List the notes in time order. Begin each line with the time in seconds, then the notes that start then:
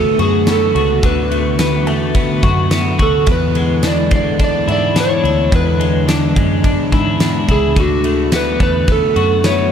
Already playing: D3 A3 B3 F#4 A4
0.19 F#2 F#4 G#4, ride
0.47 B3 A4, snare, ride, tambourine
0.75 C#2 F#4, ride
1.03 D2 D3 B4, kick, ride
1.31 A3, ride
1.59 B3, snare, ride, tambourine
1.87 E2 A3, ride
2.15 B3, kick, ride
2.43 F#2 F#4, kick, ride
2.71 B3, snare, ride, tambourine
2.99 D2 F#4 A4, kick, ride
3.26 E2 G#3 E4, kick, ride
3.31 B4
3.55 G#3, ride
3.83 D4, snare, ride, tambourine
3.87 D5
4.11 F#2 G#3, kick, ride
4.16 D5
4.40 D4, kick, ride
4.44 D5
4.68 G#2 E4, ride
4.72 D5
4.95 D4, snare, ride, tambourine
5.00 C#5
5.24 D2 E4, ride
5.51 E2 D4, kick, ride
5.56 B4
5.79 G#3, ride
6.08 D4, snare, ride, tambourine
6.36 F#2 G#3, kick, ride
6.64 D4, kick, ride
6.92 G#2 E4, kick, ride
7.20 D4, snare, ride, tambourine
7.49 C#2 E4 G#4, kick, ride
7.76 D2 D3 A3 F#4, kick, ride
8.04 A3, ride
8.32 B3 B4, snare, ride, tambourine
8.60 E2 A3 B4, kick, ride
8.88 B3, kick, ride
8.92 A4
9.16 F#2 F#4, ride
9.44 B3 C#5, snare, ride, tambourine